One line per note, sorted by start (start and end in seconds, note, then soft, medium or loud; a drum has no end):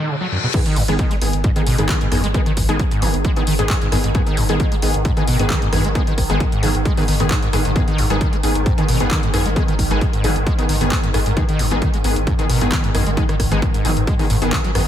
0.00 0.10 D#3 loud
0.00 reverse cymbal medium
0.09 0.15 C#3 loud
0.21 0.27 F#3 loud
0.31 0.38 F#2 medium
0.43 0.47 B2 loud
0.54 14.88 G#2 medium
0.54 0.61 G#2 medium
0.54 14.88 D#3 medium
0.54 0.60 D#3 medium
0.54 0.60 B3 medium
0.54 0.60 G#4 medium
0.54 kick loud
0.54 closed hi-hat medium
0.54 crash loud
0.66 0.78 D#3 loud
0.66 closed hi-hat medium
0.76 0.88 G#1 loud
0.76 0.83 F#2 medium
0.76 open hi-hat loud
0.88 0.99 G#1 medium
0.88 0.97 D#3 loud
0.88 0.94 G#3 medium
0.88 0.97 B3 medium
0.88 0.97 G#4 loud
0.88 closed hi-hat medium
0.99 1.06 D#3 loud
0.99 kick loud
0.99 closed hi-hat medium
1.11 1.15 G#3 medium
1.11 closed hi-hat medium
1.22 1.33 G#1 loud
1.22 1.31 D#3 medium
1.22 1.31 B3 medium
1.22 1.31 G#4 medium
1.22 open hi-hat loud
1.33 1.44 G#1 medium
1.33 closed hi-hat medium
1.44 1.51 G#2 loud
1.44 kick loud
1.44 closed hi-hat medium
1.56 1.64 D#3 medium
1.56 1.62 D#3 loud
1.56 1.64 B3 medium
1.56 1.64 G#4 medium
1.56 closed hi-hat medium
1.67 1.78 G#1 loud
1.67 1.77 B2 loud
1.67 open hi-hat loud
1.78 1.89 G#1 medium
1.78 1.85 G#2 medium
1.78 2.09 D#3 medium
1.78 2.09 B3 medium
1.78 2.09 G#4 loud
1.78 closed hi-hat medium
1.89 1.99 D#3 medium
1.89 kick loud
1.89 clap loud
1.89 closed hi-hat medium
2.01 2.07 G#2 medium
2.01 closed hi-hat medium
2.12 2.23 G#1 loud
2.12 2.22 F#2 medium
2.12 2.18 D#3 medium
2.12 2.18 B3 medium
2.12 2.18 G#4 medium
2.12 cross-stick loud
2.12 open hi-hat loud
2.24 2.34 G#1 medium
2.24 2.27 G#3 loud
2.24 closed hi-hat medium
2.34 2.40 D#3 medium
2.34 2.41 G#3 loud
2.34 2.40 B3 medium
2.34 2.40 G#4 medium
2.34 kick loud
2.34 closed hi-hat medium
2.46 2.52 D#3 loud
2.46 closed hi-hat medium
2.57 2.68 G#1 loud
2.57 kick medium
2.57 open hi-hat loud
2.69 2.79 G#1 medium
2.69 2.77 D#3 loud
2.69 2.78 G#3 medium
2.69 2.77 B3 medium
2.69 2.77 G#4 loud
2.69 closed hi-hat medium
2.79 2.83 G#2 loud
2.79 kick loud
2.79 closed hi-hat medium
2.91 3.04 G#2 medium
2.91 closed hi-hat medium
3.02 3.13 G#1 loud
3.02 3.11 D#3 medium
3.02 3.09 G#3 loud
3.02 3.11 B3 medium
3.02 3.11 G#4 medium
3.02 open hi-hat loud
3.14 3.24 G#1 medium
3.14 closed hi-hat medium
3.25 3.31 G#3 loud
3.25 kick loud
3.25 closed hi-hat medium
3.36 3.45 D#3 medium
3.36 3.42 D#3 loud
3.36 3.45 B3 medium
3.36 3.45 G#4 medium
3.36 closed hi-hat medium
3.47 3.58 G#1 loud
3.47 3.54 D#3 loud
3.47 open hi-hat loud
3.59 3.70 G#1 medium
3.59 3.63 G#2 medium
3.59 3.90 D#3 medium
3.59 3.90 B3 medium
3.59 3.90 G#4 loud
3.59 closed hi-hat medium
3.70 3.74 G#2 loud
3.70 kick loud
3.70 clap loud
3.70 closed hi-hat medium
3.82 3.88 G#2 medium
3.82 closed hi-hat medium
3.92 4.04 G#1 loud
3.92 3.96 G#2 medium
3.92 3.98 D#3 medium
3.92 3.98 B3 medium
3.92 3.98 G#4 medium
3.92 cross-stick medium
3.92 open hi-hat loud
4.04 4.15 G#1 medium
4.04 4.10 G#2 medium
4.04 closed hi-hat medium
4.15 4.21 G#2 medium
4.15 4.21 D#3 medium
4.15 4.21 B3 medium
4.15 4.21 G#4 medium
4.15 kick loud
4.15 closed hi-hat medium
4.27 4.39 D#3 loud
4.27 closed hi-hat medium
4.37 4.49 G#1 loud
4.37 4.44 F#2 medium
4.37 open hi-hat loud
4.49 4.60 G#1 medium
4.49 4.58 D#3 medium
4.49 4.55 G#3 medium
4.49 4.58 B3 medium
4.49 4.58 G#4 loud
4.49 closed hi-hat medium
4.60 4.66 D#3 loud
4.60 kick loud
4.60 closed hi-hat medium
4.72 4.75 G#3 medium
4.72 closed hi-hat medium
4.82 4.94 G#1 loud
4.82 4.92 D#3 medium
4.82 4.92 B3 medium
4.82 4.92 G#4 medium
4.82 open hi-hat loud
4.94 5.05 G#1 medium
4.94 closed hi-hat medium
5.05 5.12 G#2 loud
5.05 kick loud
5.05 closed hi-hat medium
5.17 5.23 D#3 loud
5.17 5.25 D#3 medium
5.17 5.25 B3 medium
5.17 5.25 G#4 medium
5.17 closed hi-hat medium
5.28 5.39 G#1 loud
5.28 5.37 B2 loud
5.28 open hi-hat loud
5.39 5.50 G#1 medium
5.39 5.45 G#2 medium
5.39 5.70 D#3 medium
5.39 5.70 B3 medium
5.39 5.70 G#4 loud
5.39 closed hi-hat medium
5.50 5.60 D#3 medium
5.50 kick loud
5.50 clap loud
5.50 closed hi-hat medium
5.62 5.68 G#2 medium
5.62 closed hi-hat medium
5.73 5.84 G#1 loud
5.73 5.83 F#2 medium
5.73 5.79 D#3 medium
5.73 5.79 B3 medium
5.73 5.79 G#4 medium
5.73 cross-stick medium
5.73 open hi-hat loud
5.84 5.95 G#1 medium
5.84 5.88 G#3 loud
5.84 closed hi-hat medium
5.95 6.01 D#3 medium
5.95 6.02 G#3 loud
5.95 6.01 B3 medium
5.95 6.01 G#4 medium
5.95 kick loud
5.95 closed hi-hat medium
6.07 6.13 D#3 loud
6.07 closed hi-hat medium
6.18 6.29 G#1 loud
6.18 kick medium
6.18 cross-stick medium
6.18 open hi-hat loud
6.30 6.40 G#1 medium
6.30 6.38 D#3 loud
6.30 6.39 G#3 medium
6.30 6.38 B3 medium
6.30 6.38 G#4 loud
6.30 closed hi-hat medium
6.40 6.44 G#2 loud
6.40 kick loud
6.40 closed hi-hat medium
6.52 6.65 G#2 medium
6.52 closed hi-hat medium
6.63 6.74 G#1 loud
6.63 6.72 D#3 medium
6.63 6.70 G#3 loud
6.63 6.72 B3 medium
6.63 6.72 G#4 medium
6.63 open hi-hat loud
6.75 6.85 G#1 medium
6.75 closed hi-hat medium
6.85 6.92 G#3 loud
6.85 kick loud
6.85 closed hi-hat medium
6.97 7.03 D#3 loud
6.97 7.06 D#3 medium
6.97 7.06 B3 medium
6.97 7.06 G#4 medium
6.97 open hi-hat medium
7.08 7.19 G#1 loud
7.08 7.15 D#3 loud
7.08 open hi-hat loud
7.20 7.30 G#1 medium
7.20 7.23 G#2 medium
7.20 7.28 D#3 medium
7.20 7.28 B3 medium
7.20 7.28 G#4 loud
7.20 closed hi-hat medium
7.31 7.35 G#2 loud
7.31 kick loud
7.31 clap loud
7.31 closed hi-hat medium
7.42 7.48 G#2 medium
7.42 closed hi-hat medium
7.53 7.65 G#1 loud
7.53 7.57 G#2 medium
7.53 7.59 D#3 loud
7.53 7.59 B3 medium
7.53 7.59 G#4 loud
7.53 cross-stick medium
7.53 open hi-hat loud
7.65 7.76 G#1 medium
7.65 7.71 G#2 medium
7.65 closed hi-hat medium
7.76 7.82 G#2 medium
7.76 7.82 D#3 medium
7.76 7.82 B3 medium
7.76 7.82 G#4 medium
7.76 kick loud
7.76 closed hi-hat medium
7.88 8.00 D#3 loud
7.88 closed hi-hat medium
7.98 8.10 G#1 medium
7.98 8.05 F#2 medium
7.98 open hi-hat loud
8.10 8.21 G#1 medium
8.10 8.19 D#3 loud
8.10 8.16 G#3 medium
8.10 8.19 B3 medium
8.10 8.19 G#4 loud
8.10 closed hi-hat medium
8.21 8.27 D#3 loud
8.21 kick loud
8.21 closed hi-hat medium
8.33 8.36 G#3 medium
8.33 closed hi-hat medium
8.43 8.55 G#1 loud
8.43 8.53 D#3 medium
8.43 8.53 B3 medium
8.43 8.53 G#4 medium
8.43 open hi-hat loud
8.55 8.66 G#1 medium
8.55 closed hi-hat medium
8.66 8.73 G#2 loud
8.66 kick loud
8.66 closed hi-hat medium
8.78 8.86 D#3 medium
8.78 8.84 D#3 loud
8.78 8.86 B3 medium
8.78 8.86 G#4 medium
8.78 closed hi-hat medium
8.88 9.00 G#1 loud
8.88 8.98 B2 loud
8.88 open hi-hat loud
9.00 9.11 G#1 medium
9.00 9.06 G#2 medium
9.00 9.31 D#3 loud
9.00 9.31 B3 medium
9.00 9.31 G#4 loud
9.00 closed hi-hat medium
9.11 9.21 D#3 medium
9.11 kick loud
9.11 clap loud
9.11 closed hi-hat medium
9.23 9.29 G#2 medium
9.23 closed hi-hat medium
9.34 9.45 G#1 loud
9.34 9.44 F#2 medium
9.34 9.40 D#3 medium
9.34 9.40 B3 medium
9.34 9.40 G#4 medium
9.34 cross-stick medium
9.34 open hi-hat loud
9.46 9.56 G#1 medium
9.46 9.49 G#3 loud
9.46 closed hi-hat medium
9.56 9.62 D#3 medium
9.56 9.63 G#3 loud
9.56 9.62 B3 medium
9.56 9.62 G#4 medium
9.56 kick loud
9.56 closed hi-hat medium
9.68 9.74 D#3 loud
9.68 closed hi-hat medium
9.79 9.90 G#1 loud
9.79 kick medium
9.79 open hi-hat loud
9.91 10.01 G#1 medium
9.91 9.99 D#3 loud
9.91 10.00 G#3 medium
9.91 9.99 B3 medium
9.91 9.99 G#4 loud
9.91 closed hi-hat medium
10.01 10.05 G#2 loud
10.01 kick loud
10.01 closed hi-hat medium
10.13 10.25 G#2 medium
10.13 closed hi-hat medium
10.24 10.35 G#1 loud
10.24 10.33 D#3 medium
10.24 10.30 G#3 loud
10.24 10.33 B3 medium
10.24 10.33 G#4 medium
10.24 open hi-hat loud
10.36 10.46 G#1 medium
10.36 closed hi-hat medium
10.47 10.53 G#3 loud
10.47 kick loud
10.47 closed hi-hat medium
10.58 10.67 D#3 medium
10.58 10.64 D#3 loud
10.58 10.67 B3 medium
10.58 10.67 G#4 medium
10.58 closed hi-hat medium
10.69 10.80 G#1 loud
10.69 10.76 D#3 loud
10.69 open hi-hat loud
10.81 10.91 G#1 medium
10.81 10.85 G#2 medium
10.81 11.12 D#3 medium
10.81 11.12 B3 medium
10.81 11.12 G#4 loud
10.81 closed hi-hat medium
10.92 10.96 G#2 loud
10.92 kick loud
10.92 clap loud
10.92 closed hi-hat medium
11.03 11.09 G#2 medium
11.03 closed hi-hat medium
11.14 11.25 G#1 loud
11.14 11.18 G#2 medium
11.14 11.20 D#3 medium
11.14 11.20 B3 medium
11.14 11.20 G#4 medium
11.14 cross-stick loud
11.14 open hi-hat loud
11.26 11.37 G#1 medium
11.26 11.32 G#2 medium
11.26 closed hi-hat medium
11.37 11.43 G#2 medium
11.37 11.43 D#3 medium
11.37 11.43 B3 medium
11.37 11.43 G#4 loud
11.37 kick loud
11.37 closed hi-hat medium
11.49 11.61 D#3 loud
11.49 closed hi-hat medium
11.59 11.70 G#1 loud
11.59 11.66 F#2 medium
11.59 open hi-hat loud
11.71 11.82 G#1 medium
11.71 11.80 D#3 medium
11.71 11.77 G#3 medium
11.71 11.80 B3 medium
11.71 11.80 G#4 loud
11.71 closed hi-hat medium
11.82 11.88 D#3 loud
11.82 kick loud
11.82 closed hi-hat medium
11.94 11.97 G#3 medium
11.94 closed hi-hat medium
12.04 12.16 G#1 loud
12.04 12.14 D#3 medium
12.04 12.14 B3 medium
12.04 12.14 G#4 medium
12.04 open hi-hat loud
12.16 12.27 G#1 medium
12.16 closed hi-hat medium
12.27 12.34 G#2 loud
12.27 kick loud
12.27 closed hi-hat medium
12.39 12.45 D#3 loud
12.39 12.47 D#3 medium
12.39 12.47 B3 medium
12.39 12.47 G#4 medium
12.39 closed hi-hat medium
12.50 12.61 G#1 loud
12.50 12.59 B2 loud
12.50 open hi-hat loud
12.61 12.72 G#1 medium
12.61 12.67 G#2 medium
12.61 12.92 D#3 medium
12.61 12.92 B3 medium
12.61 12.92 G#4 loud
12.61 closed hi-hat medium
12.72 12.82 D#3 medium
12.72 kick loud
12.72 clap loud
12.72 closed hi-hat medium
12.84 12.90 G#2 medium
12.84 closed hi-hat medium
12.95 13.06 G#1 loud
12.95 13.04 F#2 medium
12.95 13.00 D#3 medium
12.95 13.00 B3 medium
12.95 13.00 G#4 medium
12.95 cross-stick loud
12.95 open hi-hat loud
13.07 13.17 G#1 medium
13.07 13.10 G#3 loud
13.07 closed hi-hat medium
13.17 13.23 D#3 medium
13.17 13.24 G#3 loud
13.17 13.23 B3 medium
13.17 13.23 G#4 medium
13.17 kick loud
13.17 closed hi-hat medium
13.29 13.35 D#3 loud
13.29 cross-stick medium
13.29 closed hi-hat medium
13.40 13.51 G#1 loud
13.40 kick medium
13.40 cross-stick medium
13.40 open hi-hat loud
13.51 13.62 G#1 medium
13.51 13.60 D#3 loud
13.51 13.60 G#3 medium
13.51 13.60 B3 medium
13.51 13.60 G#4 loud
13.51 closed hi-hat medium
13.62 13.66 G#2 loud
13.62 kick loud
13.62 closed hi-hat medium
13.74 13.86 G#2 medium
13.74 closed hi-hat medium
13.85 13.96 G#1 loud
13.85 13.94 D#3 medium
13.85 13.91 G#3 loud
13.85 13.94 B3 medium
13.85 13.94 G#4 medium
13.85 open hi-hat loud
13.97 14.07 G#1 medium
13.97 closed hi-hat medium
14.07 14.14 G#3 loud
14.07 kick loud
14.07 closed hi-hat medium
14.19 14.25 D#3 loud
14.19 14.28 D#3 medium
14.19 14.28 B3 medium
14.19 14.28 G#4 medium
14.19 open hi-hat medium
14.30 14.41 G#1 loud
14.30 14.36 A2 loud
14.30 open hi-hat loud
14.42 14.52 G#1 medium
14.42 14.72 D#3 loud
14.42 14.54 D#3 loud
14.42 14.72 B3 medium
14.42 14.72 G#4 loud
14.42 closed hi-hat medium
14.52 14.59 C#3 loud
14.52 kick loud
14.52 clap loud
14.52 closed hi-hat medium
14.64 14.70 F#3 loud
14.64 closed hi-hat medium
14.75 14.86 G#1 loud
14.75 14.82 F#2 medium
14.75 14.81 D#3 medium
14.75 14.81 B3 medium
14.75 14.81 G#4 medium
14.75 cross-stick loud
14.75 open hi-hat loud